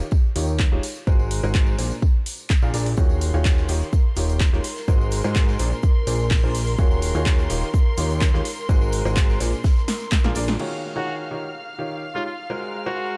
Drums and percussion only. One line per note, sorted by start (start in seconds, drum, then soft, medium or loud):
0.01 tambourine soft
0.11 kick loud
0.11 tambourine medium
0.36 open hi-hat loud
0.36 tambourine medium
0.48 tambourine soft
0.59 kick loud
0.59 clap loud
0.59 tambourine medium
0.83 open hi-hat loud
0.83 tambourine loud
0.96 tambourine soft
1.07 kick loud
1.07 tambourine medium
1.19 tambourine soft
1.31 open hi-hat loud
1.31 tambourine medium
1.44 tambourine soft
1.55 kick loud
1.55 clap loud
1.55 tambourine medium
1.66 tambourine soft
1.79 open hi-hat loud
1.79 tambourine medium
1.91 tambourine soft
2.02 kick loud
2.02 tambourine soft
2.26 open hi-hat loud
2.26 tambourine medium
2.39 tambourine soft
2.50 kick loud
2.50 clap loud
2.50 tambourine soft
2.62 tambourine soft
2.74 open hi-hat loud
2.74 tambourine loud
2.86 open hi-hat medium
2.86 tambourine soft
2.97 kick loud
2.97 tambourine soft
2.97 shaker medium
3.09 tambourine soft
3.21 open hi-hat loud
3.21 tambourine loud
3.21 shaker medium
3.35 tambourine soft
3.45 kick loud
3.45 snare loud
3.45 clap loud
3.45 tambourine soft
3.45 shaker medium
3.57 snare soft
3.57 tambourine soft
3.68 open hi-hat loud
3.68 tambourine medium
3.68 shaker medium
3.81 snare soft
3.81 tambourine soft
3.93 kick loud
3.93 tambourine medium
3.93 shaker medium
4.16 open hi-hat loud
4.16 tambourine medium
4.16 shaker medium
4.29 closed hi-hat soft
4.29 tambourine soft
4.40 kick loud
4.40 snare loud
4.40 clap loud
4.40 tambourine medium
4.40 shaker medium
4.53 snare medium
4.64 open hi-hat loud
4.64 tambourine medium
4.64 shaker medium
4.76 snare soft
4.76 tambourine soft
4.88 kick loud
4.88 tambourine soft
4.88 shaker medium
5.01 tambourine soft
5.11 open hi-hat medium
5.11 tambourine medium
5.11 shaker medium
5.24 tambourine soft
5.35 kick loud
5.35 snare loud
5.35 clap loud
5.35 tambourine soft
5.35 shaker medium
5.48 snare soft
5.48 tambourine soft
5.59 open hi-hat loud
5.59 tambourine medium
5.59 shaker medium
5.72 tambourine soft
5.83 kick loud
5.83 tambourine soft
5.83 shaker medium
6.07 open hi-hat loud
6.07 tambourine medium
6.07 shaker medium
6.20 tambourine soft
6.30 kick loud
6.30 snare loud
6.30 clap loud
6.30 open hi-hat medium
6.30 tambourine medium
6.55 open hi-hat loud
6.55 tambourine medium
6.55 shaker medium
6.67 open hi-hat medium
6.67 tambourine soft
6.78 kick loud
6.78 tambourine soft
6.78 shaker medium
6.91 tambourine soft
7.02 open hi-hat medium
7.02 tambourine medium
7.02 shaker medium
7.15 tambourine soft
7.26 kick loud
7.26 snare loud
7.26 clap loud
7.26 tambourine soft
7.26 shaker medium
7.38 snare soft
7.38 tambourine soft
7.50 open hi-hat loud
7.50 tambourine medium
7.50 shaker medium
7.62 snare soft
7.62 tambourine soft
7.74 kick loud
7.74 tambourine soft
7.74 shaker medium
7.97 open hi-hat loud
7.97 tambourine medium
7.97 shaker medium
8.10 closed hi-hat soft
8.10 tambourine soft
8.21 kick loud
8.21 snare loud
8.21 clap loud
8.21 tambourine soft
8.21 shaker medium
8.34 snare medium
8.45 open hi-hat loud
8.45 tambourine medium
8.58 tambourine soft
8.69 kick loud
8.69 tambourine soft
8.69 shaker medium
8.81 tambourine soft
8.92 open hi-hat loud
8.92 tambourine medium
8.92 shaker medium
9.06 tambourine soft
9.16 kick loud
9.16 snare loud
9.16 clap loud
9.16 tambourine medium
9.16 shaker medium
9.29 snare soft
9.29 tambourine soft
9.40 snare loud
9.40 open hi-hat loud
9.40 tambourine medium
9.40 shaker medium
9.53 tambourine soft
9.64 kick loud
9.64 snare loud
9.64 tambourine soft
9.64 shaker medium
9.76 snare soft
9.76 tambourine soft
9.88 snare medium
9.88 snare loud
9.88 open hi-hat loud
9.88 tambourine medium
9.88 shaker medium
10.00 snare soft
10.00 tambourine soft
10.11 kick loud
10.11 snare medium
10.11 clap loud
10.11 tambourine medium
10.11 shaker medium
10.24 snare soft
10.24 snare medium
10.35 open hi-hat loud
10.35 tambourine medium
10.35 shaker medium
10.48 snare medium
10.48 open hi-hat medium
10.48 tambourine soft
10.59 crash medium